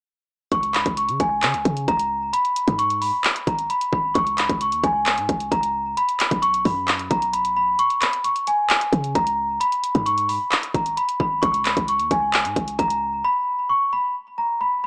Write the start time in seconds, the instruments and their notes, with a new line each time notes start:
0.52 808-style bass C#2, celesta C#6, kick, closed hi-hat
0.63 closed hi-hat
0.74 celesta B5, clap, closed hi-hat
0.86 808-style bass C#2, kick, closed hi-hat
0.97 celesta C#6, closed hi-hat
1.08 808-style bass C#3, closed hi-hat
1.20 808-style bass C#2, celesta G#5, kick, closed hi-hat
1.43 808-style bass C#3, clap, closed hi-hat
1.54 808-style bass C#2, closed hi-hat
1.65 808-style bass C#3, kick, closed hi-hat
1.77 closed hi-hat
1.88 808-style bass C#2, celesta A#5, kick, closed hi-hat
1.99 closed hi-hat
2.33 celesta B5, closed hi-hat
2.45 closed hi-hat
2.56 closed hi-hat
2.68 808-style bass G#2, kick, closed hi-hat
2.79 celesta C#6, closed hi-hat
2.90 closed hi-hat
3.02 celesta B5, open hi-hat
3.24 clap, closed hi-hat
3.36 closed hi-hat
3.47 808-style bass G#1, celesta A#5, kick, closed hi-hat
3.59 closed hi-hat
3.70 celesta B5, closed hi-hat
3.81 closed hi-hat
3.93 808-style bass G#1, celesta B5, kick
4.14 808-style bass C#2, celesta C#6, kick, closed hi-hat
4.27 closed hi-hat
4.38 celesta B5, clap, closed hi-hat
4.49 808-style bass C#2, kick, closed hi-hat
4.61 celesta C#6, closed hi-hat
4.72 808-style bass D#2, closed hi-hat
4.84 808-style bass C#2, celesta G#5, kick, closed hi-hat
5.06 clap, closed hi-hat
5.18 808-style bass G#2, closed hi-hat
5.29 808-style bass C#2, kick, closed hi-hat
5.40 closed hi-hat
5.51 808-style bass C#2, celesta A#5, kick, closed hi-hat
5.63 closed hi-hat
5.97 celesta B5, closed hi-hat
6.09 closed hi-hat
6.20 clap, closed hi-hat
6.31 808-style bass B1, kick, closed hi-hat
6.42 celesta C#6, closed hi-hat
6.54 closed hi-hat
6.65 808-style bass F#2, celesta B5, kick, open hi-hat
6.88 clap, closed hi-hat
6.99 closed hi-hat
7.11 808-style bass B1, celesta A#5, kick, closed hi-hat
7.22 closed hi-hat
7.33 celesta B5, closed hi-hat
7.45 closed hi-hat
7.57 celesta B5
7.79 celesta C#6, closed hi-hat
7.90 closed hi-hat
8.01 celesta B5, clap, closed hi-hat
8.13 closed hi-hat
8.24 celesta C#6, closed hi-hat
8.36 closed hi-hat
8.47 celesta G#5, closed hi-hat
8.70 clap, closed hi-hat
8.81 closed hi-hat
8.93 808-style bass C#3, kick, closed hi-hat
9.04 closed hi-hat
9.15 808-style bass C#2, celesta A#5, kick, closed hi-hat
9.27 closed hi-hat
9.60 celesta B5, closed hi-hat
9.72 closed hi-hat
9.84 closed hi-hat
9.95 808-style bass G#2, kick, closed hi-hat
10.06 celesta C#6, closed hi-hat
10.18 closed hi-hat
10.29 celesta B5, open hi-hat
10.52 clap, closed hi-hat
10.63 closed hi-hat
10.74 808-style bass G#1, celesta A#5, kick, closed hi-hat
10.86 closed hi-hat
10.97 celesta B5, closed hi-hat
11.09 closed hi-hat
11.20 808-style bass G#1, celesta B5, kick
11.42 808-style bass C#2, celesta C#6, kick, closed hi-hat
11.54 closed hi-hat
11.65 celesta B5, clap, closed hi-hat
11.77 808-style bass C#2, kick, closed hi-hat
11.88 celesta C#6, closed hi-hat
11.99 808-style bass D#2, closed hi-hat
12.11 808-style bass C#2, celesta G#5, kick, closed hi-hat
12.34 clap, closed hi-hat
12.45 808-style bass G#2, closed hi-hat
12.56 808-style bass C#2, kick, closed hi-hat
12.68 closed hi-hat
12.79 808-style bass C#2, celesta A#5, kick, closed hi-hat
12.90 closed hi-hat
13.25 celesta B5
13.69 celesta C#6
13.93 celesta B5
14.38 celesta A#5
14.61 celesta B5